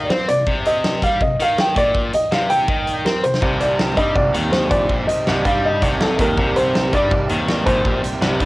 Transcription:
0.04 upright piano D5
0.10 distorted electric guitar C4, upright piano C5, snare
0.28 distorted electric guitar C3, upright piano D5, closed hi-hat
0.47 distorted electric guitar C3, kick
0.65 upright piano D#5, closed hi-hat
0.84 snare
1.02 distorted electric guitar G3, upright piano F5, kick, closed hi-hat
1.21 distorted electric guitar C3, upright piano D#5, kick
1.40 distorted electric guitar D#3, upright piano F5, closed hi-hat
1.58 upright piano G5, snare
1.76 distorted electric guitar A#2, upright piano D5, kick, snare, closed hi-hat
1.94 kick
2.13 upright piano D#5, muted distorted electric guitar stroke, closed hi-hat
2.32 distorted electric guitar C3, upright piano F5, snare
2.50 upright piano G5, closed hi-hat
2.68 distorted electric guitar D#3, kick
2.87 closed hi-hat
3.05 distorted electric guitar C4, upright piano A#4, snare
3.23 distorted electric guitar C3, upright piano C5, closed hi-hat
3.34 snare
3.41 grand piano C2, overdriven electric guitar C3 D#3 G3 C4 G4, distorted electric guitar C3, kick
3.60 upright piano D5, closed hi-hat
3.79 snare
3.97 grand piano G2, overdriven electric guitar C3 D#3 G3 C4 G4, distorted electric guitar G3, upright piano D#5, kick, closed hi-hat
4.15 grand piano C2, distorted electric guitar C3, upright piano D5, kick
4.34 grand piano D#2, distorted electric guitar D#3, closed hi-hat
4.52 upright piano C5, snare
4.70 grand piano A#1, distorted electric guitar A#2, upright piano D5, kick, closed hi-hat
4.89 overdriven electric guitar C3 D#3 G3 C4 G4, kick
5.07 grand piano C2, upright piano D#5, muted distorted electric guitar stroke, closed hi-hat
5.27 grand piano C2, distorted electric guitar C3, snare
5.44 grand piano G2, overdriven electric guitar C3 D#3 G3 C4 G4, distorted electric guitar G3, upright piano F5, kick, closed hi-hat
5.65 upright piano D#5
5.82 grand piano C2, distorted electric guitar C3, kick, closed hi-hat
6.01 upright piano A4, snare
6.19 grand piano D#2, distorted electric guitar D#3, upright piano A#4, kick, snare, closed hi-hat
6.37 grand piano C2, overdriven electric guitar C3 D#3 G3 C4 G4, distorted electric guitar C3, kick
6.56 upright piano C5, closed hi-hat
6.75 snare
6.93 grand piano G2, overdriven electric guitar C3 D#3 G3 C4 G4, distorted electric guitar G3, upright piano D5, kick, closed hi-hat
7.11 grand piano C2, distorted electric guitar C3, kick
7.29 grand piano D#2, distorted electric guitar D#3, closed hi-hat
7.49 snare
7.66 grand piano A#1, distorted electric guitar A#2, upright piano C5, kick, closed hi-hat
7.85 overdriven electric guitar C3 D#3 G3 C4 G4, kick
8.03 grand piano C2, muted distorted electric guitar stroke, closed hi-hat
8.21 grand piano C2, distorted electric guitar C3, snare
8.40 grand piano G2, distorted electric guitar G3, overdriven electric guitar C4 G4, kick, closed hi-hat

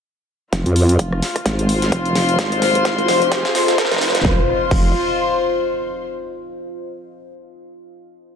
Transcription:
0.53 wobble bass F1, ambient pad F4 C5 F5, string section F4, kick, snare, closed hi-hat, riser
0.66 wobble bass F2, closed hi-hat
0.76 open hi-hat
0.89 closed hi-hat
0.99 wobble bass F1, kick, closed hi-hat
1.12 cross-stick
1.22 snare, open hi-hat
1.31 string section C5
1.36 kick, cross-stick, closed hi-hat
1.46 wobble bass G#1, kick, snare, closed hi-hat
1.59 closed hi-hat
1.65 string section C6
1.69 open hi-hat
1.82 snare, closed hi-hat
1.92 wobble bass F1, kick, closed hi-hat
2.06 closed hi-hat
2.15 wobble bass F1, snare, open hi-hat
2.29 closed hi-hat
2.39 wobble bass G#1, ambient pad D#5, kick, snare, closed hi-hat
2.52 closed hi-hat
2.62 snare, open hi-hat
2.75 wobble bass G#1, closed hi-hat
2.85 kick, snare, closed hi-hat
2.98 closed hi-hat
3.08 wobble bass F1, snare, open hi-hat
3.22 closed hi-hat
3.32 kick, snare, closed hi-hat
3.45 snare, closed hi-hat
3.55 snare, open hi-hat
3.68 snare, closed hi-hat
3.78 kick, snare, closed hi-hat
3.85 snare
3.92 wobble bass F1, snare, closed hi-hat
3.96 snare
4.01 snare, open hi-hat
4.08 snare
4.15 wobble bass F#1, snare, closed hi-hat
4.20 snare
4.25 wobble bass F1, string section F4, kick, snare, impact
4.33 string section C5
4.40 string section C6
4.71 wobble bass F1, kick, crash

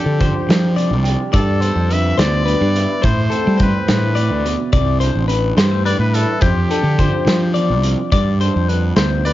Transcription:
Already playing: clean electric guitar F2 D4 A4, trumpet G4
0.06 fingered electric bass D3
0.19 clean electric guitar F3 C5, kick, closed hi-hat
0.49 fingered electric bass F3, clean electric guitar G3, snare, closed hi-hat
0.76 clean electric guitar C3 D5, closed hi-hat
0.91 fingered electric bass C2
1.04 clean electric guitar G4, closed hi-hat
1.32 clean electric guitar G2 D5, fingered electric bass G2, trumpet A4, kick, closed hi-hat
1.60 clean electric guitar B3 C5, closed hi-hat
1.76 fingered electric bass F2, clean electric guitar D4
1.89 clean electric guitar D3 B4, trumpet E5, closed hi-hat
2.18 fingered electric bass D2, clean electric guitar B3 C5, trumpet D5, snare, closed hi-hat
2.46 clean electric guitar G2 B4, closed hi-hat
2.61 fingered electric bass G2
2.76 clean electric guitar E4, closed hi-hat
3.02 fingered electric bass A2, clean electric guitar A2 C5, trumpet C5, kick, closed hi-hat
3.30 clean electric guitar C4 A4, closed hi-hat
3.47 fingered electric bass G3
3.57 clean electric guitar E3 C5, kick, closed hi-hat
3.62 trumpet B4
3.87 clean electric guitar G2, fingered electric bass A2, trumpet B4, snare, closed hi-hat
4.15 clean electric guitar A2 D5, closed hi-hat
4.30 fingered electric bass D2
4.45 clean electric guitar B2, closed hi-hat
4.73 fingered electric bass C2, clean electric guitar C3 D5, kick, closed hi-hat
5.00 clean electric guitar D4 C5, closed hi-hat
5.15 fingered electric bass A1
5.28 clean electric guitar E3 B4, closed hi-hat
5.57 fingered electric bass G2, clean electric guitar G3 C5, snare, closed hi-hat
5.71 clean electric guitar A3
5.86 clean electric guitar G2 B4, trumpet D5, closed hi-hat
5.99 fingered electric bass A2, trumpet B4
6.14 clean electric guitar E4, trumpet A4, closed hi-hat
6.41 clean electric guitar F2 C5, fingered electric bass F2, trumpet G4, kick, closed hi-hat
6.69 clean electric guitar D4 A4, closed hi-hat
6.83 fingered electric bass D3
6.98 clean electric guitar F3 C5, kick, closed hi-hat
7.27 fingered electric bass F3, snare, closed hi-hat
7.54 clean electric guitar E2 D5, closed hi-hat
7.70 fingered electric bass C2
7.83 clean electric guitar F2, closed hi-hat
8.12 fingered electric bass G2, clean electric guitar G2 D5, kick, closed hi-hat
8.41 clean electric guitar D4 C5, closed hi-hat
8.56 fingered electric bass F2
8.68 clean electric guitar D3 B4, closed hi-hat
8.96 fingered electric bass D2, clean electric guitar B3 C5, snare, closed hi-hat
9.25 clean electric guitar G2 B4, trumpet D5, closed hi-hat

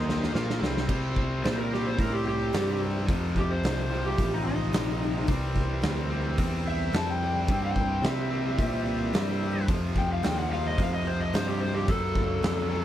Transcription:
Already playing: picked electric bass D#2, distorted electric guitar D#3 A#3 D#4, tonewheel organ A#3 D#4 D#5, electric slide guitar C5
0.09 snare
0.23 snare
0.33 picked electric bass A#2, distorted electric guitar A#3 F4 A#4, tonewheel organ A#3 E4 C5, snare
0.50 snare
0.58 picked electric bass C2, distorted electric guitar C3 G3 C4, tonewheel organ A3 B3
0.62 tonewheel organ C4 D4, snare
0.68 tonewheel organ E4 F4
0.75 tonewheel organ G4 A4, snare
0.80 tonewheel organ B4 C5
0.87 distorted electric guitar C3 G3, picked electric bass C3, tonewheel organ E4 A#4 C5 D5, kick, crash
0.91 distorted electric guitar C4
1.16 kick
1.44 picked electric bass A#2, electric slide guitar C5, snare, open hi-hat
1.58 electric slide guitar A#4
1.71 distorted electric guitar C3 G3 C4, electric slide guitar G4, snare
1.87 electric slide guitar C5
1.98 picked electric bass A2, electric slide guitar A#4, kick, open hi-hat
2.13 electric slide guitar G4
2.28 electric slide guitar G4
2.53 picked electric bass G2, snare, open hi-hat
3.06 distorted electric guitar F2 C3 F3, picked electric bass F2, tonewheel organ F3 D#4 A4, kick, open hi-hat
3.36 electric slide guitar G4, kick
3.51 electric slide guitar C5
3.63 picked electric bass C2, snare, open hi-hat
3.89 distorted electric guitar F2 C3 F3
4.06 electric slide guitar G4
4.18 picked electric bass A1, kick, open hi-hat
4.34 electric slide guitar D#4
4.46 electric slide guitar D#4
4.73 picked electric bass A#1, snare, open hi-hat
5.27 picked electric bass C2, distorted electric guitar C3 G3 C4, tonewheel organ E3 C4 A#4, kick, open hi-hat
5.56 kick
5.82 picked electric bass D2, snare, open hi-hat
6.10 distorted electric guitar C3 G3 C4
6.38 picked electric bass E2, kick, open hi-hat
6.68 electric slide guitar E5
6.93 picked electric bass F2, electric slide guitar A5, snare, open hi-hat
7.10 electric slide guitar G5
7.48 picked electric bass G2, distorted electric guitar C3 G3 C4, tonewheel organ E3 A#3 C4, kick, open hi-hat
7.65 electric slide guitar G5
7.76 kick
8.03 picked electric bass C3, electric slide guitar E5, snare, open hi-hat
8.30 distorted electric guitar C3 G3 C4
8.59 picked electric bass A#2, kick, open hi-hat
9.13 picked electric bass G2, snare, open hi-hat
9.66 distorted electric guitar F2 C3 F3, picked electric bass F2, kick, open hi-hat
9.71 tonewheel organ F3 D#4 A4
9.96 electric slide guitar G5, kick
10.12 electric slide guitar F5
10.23 picked electric bass D#2, electric slide guitar G5, snare, open hi-hat
10.39 electric slide guitar F#5
10.49 distorted electric guitar F2 C3 F3, electric slide guitar F5
10.67 electric slide guitar D#5
10.78 picked electric bass F2, electric slide guitar F5, kick, open hi-hat
10.94 electric slide guitar D#5
11.07 electric slide guitar C5
11.20 electric slide guitar D#5
11.33 picked electric bass G2, electric slide guitar C5, snare, open hi-hat
11.47 electric slide guitar G4
11.61 electric slide guitar C5
11.74 electric slide guitar G4
11.86 distorted electric guitar F#2 C#3, picked electric bass F#2, tonewheel organ D#4 F#4 A4, electric slide guitar A4, kick, open hi-hat
11.91 distorted electric guitar F#3
12.15 kick
12.43 picked electric bass F2, snare, open hi-hat
12.69 distorted electric guitar F#2 C#3 F#3

